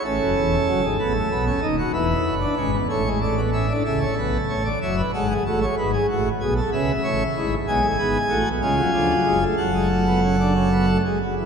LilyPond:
<<
  \new Staff \with { instrumentName = "Pipe organ" } { \time 6/8 \key a \major \tempo 4. = 63 << { r2. | r2. | e''16 cis''16 b'8 cis''16 d''16 e''8 fis''8 a'8 | b'4. e''4. |
\key fis \minor gis''4. gis''4. | fis''2~ fis''8 r8 | } \\ { a'2. | b'4. cis''8 d''8 e''8 | a'4. cis''16 b'16 a'16 gis'16 fis'16 cis''16 | r16 gis'16 fis'8 gis'16 a'16 b'8 cis''8 e'8 |
gis'8 gis'8 fis'8 eis'4. | a'2~ a'8 r8 | } >> }
  \new Staff \with { instrumentName = "Pipe organ" } { \clef bass \time 6/8 \key a \major << { cis'4. b16 a16 b16 cis'16 dis'16 fis'16 | e'8. d'16 cis'16 b16 a16 gis16 a16 b16 cis'16 d'16 | r2. | r2. |
\key fis \minor gis8 b8 a8 gis16 fis16 eis16 fis16 gis16 a16 | fis16 gis16 a16 b16 cis'16 d'16 cis'16 b16 a16 gis16 fis16 e16 | } \\ { <a,, a,>16 <fis,, fis,>16 <e,, e,>8 <fis,, fis,>16 <gis,, gis,>16 <a,, a,>8 <b,, b,>8 <dis,, dis,>8 | <e,, e,>8 <fis,, fis,>8 <gis,, gis,>8 <a,, a,>4. | <cis, cis>8 <b,, b,>8 <a,, a,>8 <fis,, fis,>8 <gis,, gis,>8 <a,, a,>8 | <gis,, gis,>8 <a,, a,>8 <b,, b,>8 <cis, cis>8 <a,, a,>8 <gis,, gis,>8 |
<b,, b,>16 <a,, a,>16 <gis,, gis,>8 <a,, a,>16 <b,, b,>16 <cis, cis>8 <d, d>8 <fis,, fis,>8 | <fis,, fis,>2~ <fis,, fis,>8 r8 | } >> }
>>